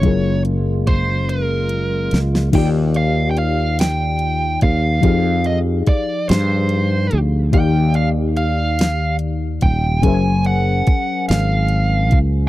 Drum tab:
CC |------------|x-----------|------------|------------|
HH |x-x-x-x-x-x-|x-x-x-x-x-x-|x-x-x-x-x-x-|x-x-x-x-x-x-|
SD |----------oo|------o-----|------o-----|------o-----|
BD |o---o-------|o---------o-|o---o-------|o---------o-|

CC |------------|
HH |x-x-x-x-x-x-|
SD |------o-----|
BD |o---o-----o-|